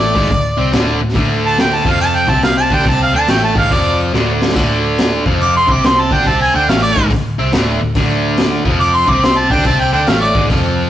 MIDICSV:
0, 0, Header, 1, 5, 480
1, 0, Start_track
1, 0, Key_signature, -1, "minor"
1, 0, Tempo, 424929
1, 1300, Time_signature, 4, 2, 24, 8
1, 12309, End_track
2, 0, Start_track
2, 0, Title_t, "Harmonica"
2, 0, Program_c, 0, 22
2, 0, Note_on_c, 0, 74, 93
2, 957, Note_off_c, 0, 74, 0
2, 1655, Note_on_c, 0, 81, 99
2, 1794, Note_off_c, 0, 81, 0
2, 1809, Note_on_c, 0, 79, 84
2, 1976, Note_on_c, 0, 81, 84
2, 1993, Note_off_c, 0, 79, 0
2, 2149, Note_on_c, 0, 77, 84
2, 2166, Note_off_c, 0, 81, 0
2, 2267, Note_off_c, 0, 77, 0
2, 2274, Note_on_c, 0, 81, 89
2, 2430, Note_on_c, 0, 79, 98
2, 2447, Note_off_c, 0, 81, 0
2, 2594, Note_on_c, 0, 81, 91
2, 2611, Note_off_c, 0, 79, 0
2, 2743, Note_off_c, 0, 81, 0
2, 2750, Note_on_c, 0, 77, 79
2, 2901, Note_off_c, 0, 77, 0
2, 2910, Note_on_c, 0, 81, 85
2, 3101, Note_on_c, 0, 79, 79
2, 3118, Note_off_c, 0, 81, 0
2, 3237, Note_off_c, 0, 79, 0
2, 3256, Note_on_c, 0, 81, 80
2, 3394, Note_off_c, 0, 81, 0
2, 3420, Note_on_c, 0, 77, 81
2, 3557, Note_off_c, 0, 77, 0
2, 3569, Note_on_c, 0, 81, 82
2, 3735, Note_on_c, 0, 79, 84
2, 3752, Note_off_c, 0, 81, 0
2, 3874, Note_off_c, 0, 79, 0
2, 3890, Note_on_c, 0, 81, 77
2, 4031, Note_off_c, 0, 81, 0
2, 4047, Note_on_c, 0, 77, 90
2, 4210, Note_on_c, 0, 74, 90
2, 4227, Note_off_c, 0, 77, 0
2, 4498, Note_off_c, 0, 74, 0
2, 6128, Note_on_c, 0, 86, 94
2, 6271, Note_off_c, 0, 86, 0
2, 6287, Note_on_c, 0, 84, 93
2, 6456, Note_on_c, 0, 86, 85
2, 6473, Note_off_c, 0, 84, 0
2, 6624, Note_on_c, 0, 84, 88
2, 6641, Note_off_c, 0, 86, 0
2, 6776, Note_on_c, 0, 81, 83
2, 6793, Note_off_c, 0, 84, 0
2, 6930, Note_on_c, 0, 79, 87
2, 6946, Note_off_c, 0, 81, 0
2, 7072, Note_off_c, 0, 79, 0
2, 7080, Note_on_c, 0, 81, 90
2, 7227, Note_off_c, 0, 81, 0
2, 7248, Note_on_c, 0, 80, 81
2, 7391, Note_off_c, 0, 80, 0
2, 7398, Note_on_c, 0, 79, 84
2, 7545, Note_off_c, 0, 79, 0
2, 7552, Note_on_c, 0, 77, 79
2, 7703, Note_off_c, 0, 77, 0
2, 7708, Note_on_c, 0, 74, 98
2, 7961, Note_off_c, 0, 74, 0
2, 9947, Note_on_c, 0, 86, 104
2, 10128, Note_on_c, 0, 84, 92
2, 10145, Note_off_c, 0, 86, 0
2, 10268, Note_on_c, 0, 86, 90
2, 10285, Note_off_c, 0, 84, 0
2, 10440, Note_on_c, 0, 84, 90
2, 10457, Note_off_c, 0, 86, 0
2, 10589, Note_on_c, 0, 81, 85
2, 10606, Note_off_c, 0, 84, 0
2, 10746, Note_on_c, 0, 79, 77
2, 10762, Note_off_c, 0, 81, 0
2, 10899, Note_off_c, 0, 79, 0
2, 10917, Note_on_c, 0, 81, 91
2, 11058, Note_off_c, 0, 81, 0
2, 11065, Note_on_c, 0, 79, 83
2, 11209, Note_off_c, 0, 79, 0
2, 11216, Note_on_c, 0, 79, 85
2, 11385, Note_on_c, 0, 77, 86
2, 11402, Note_off_c, 0, 79, 0
2, 11529, Note_off_c, 0, 77, 0
2, 11536, Note_on_c, 0, 74, 96
2, 11795, Note_off_c, 0, 74, 0
2, 12309, End_track
3, 0, Start_track
3, 0, Title_t, "Distorted electric guitar"
3, 0, Program_c, 1, 30
3, 0, Note_on_c, 1, 45, 79
3, 0, Note_on_c, 1, 57, 85
3, 154, Note_off_c, 1, 45, 0
3, 159, Note_off_c, 1, 57, 0
3, 162, Note_on_c, 1, 44, 80
3, 171, Note_on_c, 1, 56, 87
3, 331, Note_off_c, 1, 44, 0
3, 335, Note_off_c, 1, 56, 0
3, 338, Note_on_c, 1, 38, 67
3, 588, Note_off_c, 1, 38, 0
3, 644, Note_on_c, 1, 48, 72
3, 653, Note_on_c, 1, 60, 91
3, 812, Note_off_c, 1, 48, 0
3, 816, Note_off_c, 1, 60, 0
3, 820, Note_on_c, 1, 38, 89
3, 833, Note_on_c, 1, 50, 101
3, 1122, Note_off_c, 1, 38, 0
3, 1128, Note_off_c, 1, 50, 0
3, 1140, Note_on_c, 1, 38, 58
3, 1271, Note_off_c, 1, 38, 0
3, 1299, Note_on_c, 1, 38, 83
3, 1307, Note_on_c, 1, 50, 91
3, 2082, Note_off_c, 1, 38, 0
3, 2086, Note_off_c, 1, 50, 0
3, 2091, Note_on_c, 1, 41, 76
3, 2099, Note_on_c, 1, 53, 86
3, 2562, Note_off_c, 1, 41, 0
3, 2566, Note_off_c, 1, 53, 0
3, 2580, Note_on_c, 1, 48, 81
3, 2580, Note_on_c, 1, 60, 88
3, 3047, Note_off_c, 1, 48, 0
3, 3047, Note_off_c, 1, 60, 0
3, 3063, Note_on_c, 1, 50, 79
3, 3063, Note_on_c, 1, 62, 83
3, 3222, Note_off_c, 1, 50, 0
3, 3222, Note_off_c, 1, 62, 0
3, 3226, Note_on_c, 1, 48, 80
3, 3231, Note_on_c, 1, 60, 98
3, 3525, Note_off_c, 1, 48, 0
3, 3528, Note_off_c, 1, 60, 0
3, 3542, Note_on_c, 1, 50, 91
3, 3545, Note_on_c, 1, 62, 93
3, 3697, Note_on_c, 1, 45, 76
3, 3701, Note_off_c, 1, 50, 0
3, 3703, Note_off_c, 1, 62, 0
3, 3704, Note_on_c, 1, 57, 94
3, 4001, Note_off_c, 1, 45, 0
3, 4004, Note_off_c, 1, 57, 0
3, 4010, Note_on_c, 1, 44, 78
3, 4013, Note_on_c, 1, 56, 85
3, 4175, Note_off_c, 1, 44, 0
3, 4177, Note_off_c, 1, 56, 0
3, 4183, Note_on_c, 1, 41, 82
3, 4187, Note_on_c, 1, 53, 96
3, 4657, Note_off_c, 1, 41, 0
3, 4659, Note_off_c, 1, 53, 0
3, 4669, Note_on_c, 1, 38, 79
3, 4675, Note_on_c, 1, 50, 94
3, 5133, Note_off_c, 1, 38, 0
3, 5144, Note_off_c, 1, 50, 0
3, 5147, Note_on_c, 1, 38, 76
3, 5155, Note_on_c, 1, 50, 94
3, 5926, Note_off_c, 1, 38, 0
3, 5930, Note_off_c, 1, 50, 0
3, 5936, Note_on_c, 1, 41, 77
3, 5943, Note_on_c, 1, 53, 78
3, 6405, Note_off_c, 1, 41, 0
3, 6409, Note_off_c, 1, 53, 0
3, 6414, Note_on_c, 1, 48, 86
3, 6422, Note_on_c, 1, 60, 82
3, 6884, Note_off_c, 1, 48, 0
3, 6888, Note_off_c, 1, 60, 0
3, 6901, Note_on_c, 1, 50, 90
3, 6903, Note_on_c, 1, 62, 84
3, 7061, Note_off_c, 1, 50, 0
3, 7062, Note_off_c, 1, 62, 0
3, 7076, Note_on_c, 1, 48, 78
3, 7079, Note_on_c, 1, 60, 98
3, 7371, Note_off_c, 1, 48, 0
3, 7372, Note_off_c, 1, 60, 0
3, 7383, Note_on_c, 1, 50, 83
3, 7391, Note_on_c, 1, 62, 90
3, 7542, Note_off_c, 1, 50, 0
3, 7546, Note_off_c, 1, 62, 0
3, 7554, Note_on_c, 1, 45, 91
3, 7565, Note_on_c, 1, 57, 97
3, 7850, Note_off_c, 1, 45, 0
3, 7855, Note_off_c, 1, 57, 0
3, 7861, Note_on_c, 1, 44, 86
3, 7871, Note_on_c, 1, 56, 90
3, 8021, Note_off_c, 1, 44, 0
3, 8026, Note_off_c, 1, 56, 0
3, 8043, Note_on_c, 1, 38, 67
3, 8281, Note_off_c, 1, 38, 0
3, 8339, Note_on_c, 1, 48, 91
3, 8346, Note_on_c, 1, 60, 95
3, 8500, Note_off_c, 1, 48, 0
3, 8504, Note_off_c, 1, 60, 0
3, 8507, Note_on_c, 1, 38, 93
3, 8513, Note_on_c, 1, 50, 82
3, 8806, Note_off_c, 1, 38, 0
3, 8809, Note_off_c, 1, 50, 0
3, 8826, Note_on_c, 1, 38, 64
3, 8955, Note_off_c, 1, 38, 0
3, 8986, Note_on_c, 1, 38, 88
3, 8994, Note_on_c, 1, 50, 97
3, 9766, Note_off_c, 1, 38, 0
3, 9769, Note_off_c, 1, 50, 0
3, 9771, Note_on_c, 1, 41, 85
3, 9773, Note_on_c, 1, 53, 99
3, 10243, Note_off_c, 1, 41, 0
3, 10244, Note_off_c, 1, 53, 0
3, 10249, Note_on_c, 1, 48, 78
3, 10253, Note_on_c, 1, 60, 83
3, 10722, Note_off_c, 1, 48, 0
3, 10724, Note_off_c, 1, 60, 0
3, 10733, Note_on_c, 1, 50, 76
3, 10741, Note_on_c, 1, 62, 90
3, 10897, Note_off_c, 1, 50, 0
3, 10899, Note_on_c, 1, 48, 82
3, 10902, Note_off_c, 1, 62, 0
3, 10905, Note_on_c, 1, 60, 93
3, 11202, Note_off_c, 1, 48, 0
3, 11205, Note_off_c, 1, 60, 0
3, 11213, Note_on_c, 1, 50, 83
3, 11220, Note_on_c, 1, 62, 92
3, 11377, Note_off_c, 1, 50, 0
3, 11377, Note_on_c, 1, 45, 81
3, 11381, Note_off_c, 1, 62, 0
3, 11387, Note_on_c, 1, 57, 95
3, 11681, Note_off_c, 1, 45, 0
3, 11686, Note_off_c, 1, 57, 0
3, 11698, Note_on_c, 1, 44, 80
3, 11705, Note_on_c, 1, 56, 80
3, 11857, Note_off_c, 1, 44, 0
3, 11862, Note_on_c, 1, 41, 81
3, 11863, Note_off_c, 1, 56, 0
3, 11868, Note_on_c, 1, 53, 93
3, 12309, Note_off_c, 1, 41, 0
3, 12309, Note_off_c, 1, 53, 0
3, 12309, End_track
4, 0, Start_track
4, 0, Title_t, "Picked electric bass"
4, 0, Program_c, 2, 34
4, 0, Note_on_c, 2, 33, 92
4, 158, Note_off_c, 2, 33, 0
4, 170, Note_on_c, 2, 32, 86
4, 328, Note_off_c, 2, 32, 0
4, 348, Note_on_c, 2, 26, 73
4, 633, Note_off_c, 2, 26, 0
4, 657, Note_on_c, 2, 36, 89
4, 812, Note_off_c, 2, 36, 0
4, 819, Note_on_c, 2, 26, 87
4, 1109, Note_off_c, 2, 26, 0
4, 1145, Note_on_c, 2, 26, 75
4, 1296, Note_off_c, 2, 26, 0
4, 1302, Note_on_c, 2, 26, 84
4, 2047, Note_off_c, 2, 26, 0
4, 2090, Note_on_c, 2, 29, 83
4, 2538, Note_off_c, 2, 29, 0
4, 2569, Note_on_c, 2, 36, 84
4, 3017, Note_off_c, 2, 36, 0
4, 3052, Note_on_c, 2, 38, 76
4, 3209, Note_off_c, 2, 38, 0
4, 3226, Note_on_c, 2, 36, 85
4, 3513, Note_off_c, 2, 36, 0
4, 3539, Note_on_c, 2, 38, 98
4, 3693, Note_off_c, 2, 38, 0
4, 3702, Note_on_c, 2, 33, 88
4, 3991, Note_off_c, 2, 33, 0
4, 4015, Note_on_c, 2, 32, 76
4, 4171, Note_off_c, 2, 32, 0
4, 4185, Note_on_c, 2, 29, 92
4, 4630, Note_off_c, 2, 29, 0
4, 4670, Note_on_c, 2, 26, 82
4, 5113, Note_off_c, 2, 26, 0
4, 5144, Note_on_c, 2, 26, 92
4, 5889, Note_off_c, 2, 26, 0
4, 5939, Note_on_c, 2, 29, 88
4, 6383, Note_off_c, 2, 29, 0
4, 6421, Note_on_c, 2, 36, 90
4, 6864, Note_off_c, 2, 36, 0
4, 6901, Note_on_c, 2, 38, 93
4, 7055, Note_off_c, 2, 38, 0
4, 7069, Note_on_c, 2, 36, 88
4, 7355, Note_off_c, 2, 36, 0
4, 7390, Note_on_c, 2, 38, 102
4, 7540, Note_off_c, 2, 38, 0
4, 7546, Note_on_c, 2, 33, 93
4, 7834, Note_off_c, 2, 33, 0
4, 7856, Note_on_c, 2, 32, 87
4, 8012, Note_off_c, 2, 32, 0
4, 8026, Note_on_c, 2, 26, 82
4, 8314, Note_off_c, 2, 26, 0
4, 8345, Note_on_c, 2, 36, 84
4, 8497, Note_off_c, 2, 36, 0
4, 8520, Note_on_c, 2, 26, 89
4, 8801, Note_off_c, 2, 26, 0
4, 8826, Note_on_c, 2, 26, 69
4, 8975, Note_off_c, 2, 26, 0
4, 8981, Note_on_c, 2, 26, 90
4, 9728, Note_off_c, 2, 26, 0
4, 9772, Note_on_c, 2, 29, 76
4, 10219, Note_off_c, 2, 29, 0
4, 10254, Note_on_c, 2, 36, 84
4, 10700, Note_off_c, 2, 36, 0
4, 10728, Note_on_c, 2, 38, 85
4, 10888, Note_off_c, 2, 38, 0
4, 10902, Note_on_c, 2, 36, 85
4, 11191, Note_off_c, 2, 36, 0
4, 11214, Note_on_c, 2, 38, 90
4, 11371, Note_off_c, 2, 38, 0
4, 11391, Note_on_c, 2, 33, 75
4, 11676, Note_off_c, 2, 33, 0
4, 11692, Note_on_c, 2, 32, 74
4, 11850, Note_off_c, 2, 32, 0
4, 11863, Note_on_c, 2, 29, 86
4, 12309, Note_off_c, 2, 29, 0
4, 12309, End_track
5, 0, Start_track
5, 0, Title_t, "Drums"
5, 175, Note_on_c, 9, 36, 89
5, 288, Note_off_c, 9, 36, 0
5, 344, Note_on_c, 9, 36, 90
5, 348, Note_on_c, 9, 46, 50
5, 457, Note_off_c, 9, 36, 0
5, 461, Note_off_c, 9, 46, 0
5, 821, Note_on_c, 9, 46, 46
5, 830, Note_on_c, 9, 38, 93
5, 934, Note_off_c, 9, 46, 0
5, 943, Note_off_c, 9, 38, 0
5, 1231, Note_on_c, 9, 38, 30
5, 1302, Note_on_c, 9, 36, 87
5, 1304, Note_on_c, 9, 46, 42
5, 1344, Note_off_c, 9, 38, 0
5, 1415, Note_off_c, 9, 36, 0
5, 1417, Note_off_c, 9, 46, 0
5, 1781, Note_on_c, 9, 46, 38
5, 1790, Note_on_c, 9, 38, 92
5, 1894, Note_off_c, 9, 46, 0
5, 1903, Note_off_c, 9, 38, 0
5, 2090, Note_on_c, 9, 36, 88
5, 2203, Note_off_c, 9, 36, 0
5, 2260, Note_on_c, 9, 46, 47
5, 2373, Note_off_c, 9, 46, 0
5, 2573, Note_on_c, 9, 36, 96
5, 2686, Note_off_c, 9, 36, 0
5, 2741, Note_on_c, 9, 46, 47
5, 2750, Note_on_c, 9, 38, 99
5, 2853, Note_off_c, 9, 46, 0
5, 2863, Note_off_c, 9, 38, 0
5, 3053, Note_on_c, 9, 36, 88
5, 3144, Note_on_c, 9, 38, 30
5, 3166, Note_off_c, 9, 36, 0
5, 3222, Note_on_c, 9, 36, 87
5, 3222, Note_on_c, 9, 46, 49
5, 3257, Note_off_c, 9, 38, 0
5, 3335, Note_off_c, 9, 36, 0
5, 3335, Note_off_c, 9, 46, 0
5, 3702, Note_on_c, 9, 46, 51
5, 3711, Note_on_c, 9, 38, 89
5, 3815, Note_off_c, 9, 46, 0
5, 3824, Note_off_c, 9, 38, 0
5, 4014, Note_on_c, 9, 36, 95
5, 4127, Note_off_c, 9, 36, 0
5, 4186, Note_on_c, 9, 36, 98
5, 4190, Note_on_c, 9, 46, 51
5, 4299, Note_off_c, 9, 36, 0
5, 4303, Note_off_c, 9, 46, 0
5, 4679, Note_on_c, 9, 38, 52
5, 4792, Note_off_c, 9, 38, 0
5, 4988, Note_on_c, 9, 38, 72
5, 5074, Note_off_c, 9, 38, 0
5, 5074, Note_on_c, 9, 38, 68
5, 5147, Note_on_c, 9, 36, 95
5, 5152, Note_on_c, 9, 46, 45
5, 5152, Note_on_c, 9, 55, 76
5, 5187, Note_off_c, 9, 38, 0
5, 5260, Note_off_c, 9, 36, 0
5, 5265, Note_off_c, 9, 46, 0
5, 5265, Note_off_c, 9, 55, 0
5, 5625, Note_on_c, 9, 46, 42
5, 5634, Note_on_c, 9, 38, 96
5, 5738, Note_off_c, 9, 46, 0
5, 5747, Note_off_c, 9, 38, 0
5, 5940, Note_on_c, 9, 36, 85
5, 6053, Note_off_c, 9, 36, 0
5, 6113, Note_on_c, 9, 46, 47
5, 6226, Note_off_c, 9, 46, 0
5, 6419, Note_on_c, 9, 36, 97
5, 6532, Note_off_c, 9, 36, 0
5, 6593, Note_on_c, 9, 46, 43
5, 6602, Note_on_c, 9, 38, 98
5, 6706, Note_off_c, 9, 46, 0
5, 6715, Note_off_c, 9, 38, 0
5, 6901, Note_on_c, 9, 36, 91
5, 7006, Note_on_c, 9, 38, 27
5, 7014, Note_off_c, 9, 36, 0
5, 7071, Note_on_c, 9, 36, 93
5, 7079, Note_on_c, 9, 46, 43
5, 7119, Note_off_c, 9, 38, 0
5, 7184, Note_off_c, 9, 36, 0
5, 7192, Note_off_c, 9, 46, 0
5, 7554, Note_on_c, 9, 46, 47
5, 7563, Note_on_c, 9, 38, 100
5, 7667, Note_off_c, 9, 46, 0
5, 7676, Note_off_c, 9, 38, 0
5, 7858, Note_on_c, 9, 36, 93
5, 7970, Note_off_c, 9, 36, 0
5, 8023, Note_on_c, 9, 46, 53
5, 8024, Note_on_c, 9, 36, 88
5, 8136, Note_off_c, 9, 46, 0
5, 8137, Note_off_c, 9, 36, 0
5, 8500, Note_on_c, 9, 46, 46
5, 8509, Note_on_c, 9, 38, 98
5, 8613, Note_off_c, 9, 46, 0
5, 8622, Note_off_c, 9, 38, 0
5, 8979, Note_on_c, 9, 46, 50
5, 8982, Note_on_c, 9, 36, 91
5, 9092, Note_off_c, 9, 46, 0
5, 9095, Note_off_c, 9, 36, 0
5, 9459, Note_on_c, 9, 46, 47
5, 9468, Note_on_c, 9, 38, 100
5, 9572, Note_off_c, 9, 46, 0
5, 9581, Note_off_c, 9, 38, 0
5, 9775, Note_on_c, 9, 36, 91
5, 9888, Note_off_c, 9, 36, 0
5, 9942, Note_on_c, 9, 46, 46
5, 10055, Note_off_c, 9, 46, 0
5, 10256, Note_on_c, 9, 36, 99
5, 10369, Note_off_c, 9, 36, 0
5, 10425, Note_on_c, 9, 46, 44
5, 10434, Note_on_c, 9, 38, 100
5, 10538, Note_off_c, 9, 46, 0
5, 10547, Note_off_c, 9, 38, 0
5, 10733, Note_on_c, 9, 36, 92
5, 10823, Note_on_c, 9, 38, 30
5, 10846, Note_off_c, 9, 36, 0
5, 10893, Note_on_c, 9, 46, 47
5, 10901, Note_on_c, 9, 36, 92
5, 10936, Note_off_c, 9, 38, 0
5, 11006, Note_off_c, 9, 46, 0
5, 11014, Note_off_c, 9, 36, 0
5, 11373, Note_on_c, 9, 46, 40
5, 11382, Note_on_c, 9, 38, 98
5, 11486, Note_off_c, 9, 46, 0
5, 11495, Note_off_c, 9, 38, 0
5, 11691, Note_on_c, 9, 36, 91
5, 11804, Note_off_c, 9, 36, 0
5, 11862, Note_on_c, 9, 36, 92
5, 11864, Note_on_c, 9, 46, 51
5, 11975, Note_off_c, 9, 36, 0
5, 11977, Note_off_c, 9, 46, 0
5, 12309, End_track
0, 0, End_of_file